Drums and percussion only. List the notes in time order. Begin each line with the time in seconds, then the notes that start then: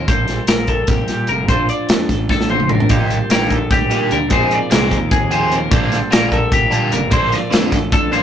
0.08 kick, closed hi-hat
0.28 snare, closed hi-hat
0.47 snare, closed hi-hat
0.67 kick, closed hi-hat
0.87 kick, snare, closed hi-hat
1.08 snare, closed hi-hat
1.27 closed hi-hat
1.48 kick, closed hi-hat
1.69 closed hi-hat
1.89 snare, closed hi-hat
2.09 kick, snare, closed hi-hat
2.29 kick, snare
2.41 snare
2.50 high tom
2.60 mid tom
2.69 mid tom
2.80 floor tom
2.89 kick, closed hi-hat
3.10 closed hi-hat
3.30 snare, closed hi-hat
3.50 kick, closed hi-hat
3.71 kick, snare, closed hi-hat
3.91 closed hi-hat
4.11 closed hi-hat
4.30 kick, closed hi-hat
4.51 closed hi-hat
4.71 snare, closed hi-hat
4.91 kick, closed hi-hat
5.11 kick, closed hi-hat
5.31 closed hi-hat
5.52 closed hi-hat
5.72 kick, closed hi-hat
5.92 snare, closed hi-hat
6.12 snare, closed hi-hat
6.32 kick, closed hi-hat
6.52 kick, closed hi-hat
6.72 closed hi-hat
6.92 closed hi-hat
7.11 kick, closed hi-hat
7.32 snare, closed hi-hat
7.52 snare, closed hi-hat
7.72 kick, snare, closed hi-hat
7.92 kick, closed hi-hat
8.13 closed hi-hat